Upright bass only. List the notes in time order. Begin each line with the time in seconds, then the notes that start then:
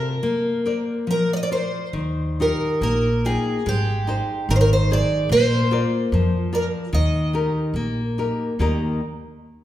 1.93 D#2
2.81 A#1
3.66 G#1
4.49 G#1
5.29 A#1
6.12 F2
6.93 D#2
7.74 A#1
8.59 D#2